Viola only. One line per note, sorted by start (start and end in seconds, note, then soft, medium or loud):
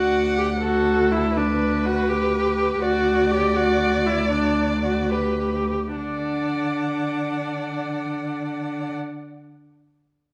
0.00 0.34 F#4 medium
0.38 0.46 G4 medium
0.62 1.13 F#4 medium
1.12 1.38 E4 medium
1.37 1.87 D4 medium
1.85 2.10 F#4 medium
2.09 2.81 G4 medium
2.82 3.33 F#4 medium
3.31 3.57 G4 medium
3.56 4.08 F#4 medium
4.06 4.31 E4 medium
4.32 4.83 D4 medium
4.84 5.12 F#4 soft
5.10 5.95 G4 soft
5.95 8.92 D4 soft